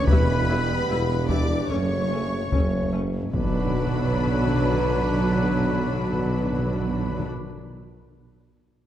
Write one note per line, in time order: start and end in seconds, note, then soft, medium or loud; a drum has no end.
0.00 1.66 E3 medium
0.06 0.78 E1 medium
0.06 0.71 E1 medium
0.06 0.79 E2 medium
0.06 1.70 G3 medium
0.06 1.27 B3 medium
0.06 1.25 B4 medium
0.06 1.13 B4 medium
0.06 1.26 B5 medium
0.06 taiko medium
0.11 0.19 G3 medium
0.11 0.19 E4 medium
0.49 0.57 G3 soft
0.49 0.57 E4 soft
0.86 1.59 E1 medium
0.86 1.60 E1 medium
0.86 1.60 E2 medium
0.86 0.98 E4 soft
0.91 0.99 G3 soft
1.29 1.37 G3 soft
1.29 1.70 D4 medium
1.29 1.38 E4 soft
1.29 1.70 D5 medium
1.29 1.69 D5 soft
1.29 1.70 D6 medium
1.29 taiko medium
1.69 2.42 F#1 medium
1.69 2.42 F#1 soft
1.69 2.42 F#2 medium
1.69 3.02 C#3 soft
1.69 1.77 A3 soft
1.69 2.98 A3 soft
1.69 1.78 C#4 soft
1.69 2.91 C#4 soft
1.69 2.91 C#5 soft
1.69 2.93 C#6 medium
2.13 2.21 A3 soft
2.13 2.21 C#4 soft
2.51 3.23 F#1 soft
2.51 3.24 F#1 medium
2.51 3.24 F#2 soft
2.51 2.61 A3 soft
2.51 2.60 C#4 soft
2.51 taiko medium
2.93 3.01 A3 soft
2.93 3.01 C#4 soft
3.32 7.24 B1 soft
3.32 7.25 B1 medium
3.32 7.24 B2 medium
3.32 3.40 B2 medium
3.32 7.25 D3 soft
3.32 7.25 F#3 soft
3.32 7.23 B3 soft
3.32 7.25 D4 medium
3.32 7.23 B4 medium
3.32 7.25 B4 soft
3.32 7.25 B5 medium
3.32 impact medium
3.40 3.46 B2 soft
3.46 3.53 B2 medium
3.53 3.60 B2 soft
3.60 3.67 B2 medium
3.67 3.74 B2 soft
3.74 3.80 B2 soft
3.80 3.87 B2 soft
3.87 3.93 B2 soft
3.93 4.00 B2 soft
4.00 4.07 B2 medium
4.07 4.13 B2 soft
4.14 4.20 B2 medium
4.21 4.27 B2 soft
4.27 4.34 B2 medium
4.34 4.40 B2 soft
4.41 4.47 B2 medium
4.47 4.53 B2 soft
4.53 4.60 B2 medium
4.60 4.67 B2 soft
4.67 4.74 B2 soft
4.74 4.80 B2 soft
4.81 4.87 B2 medium
4.88 4.94 B2 soft
4.94 5.01 B2 medium
5.01 5.08 B2 soft
5.08 5.14 B2 soft
5.14 5.20 B2 soft
5.20 5.27 B2 soft
5.27 5.34 B2 soft
5.34 5.40 B2 medium
5.40 5.47 B2 medium
5.47 5.53 B2 medium
5.53 5.59 B2 soft
5.59 5.66 B2 medium
5.66 5.73 B2 soft
5.73 5.80 B2 medium
5.80 5.86 B2 soft
5.87 5.93 B2 medium
5.93 5.99 B2 medium
5.99 6.06 B2 medium
6.06 6.13 B2 medium
6.13 6.19 B2 medium
6.19 6.26 B2 soft
6.26 6.32 B2 soft
6.32 6.39 B2 soft
6.39 6.46 B2 soft
6.46 6.52 B2 soft
6.52 6.59 B2 medium
6.59 6.65 B2 soft
6.66 6.72 B2 medium
6.72 6.79 B2 soft
6.79 6.85 B2 medium
6.86 6.92 B2 soft
6.92 6.99 B2 soft
6.99 7.06 B2 soft
7.06 7.13 B2 medium
7.13 7.19 B2 medium
7.19 7.26 B2 medium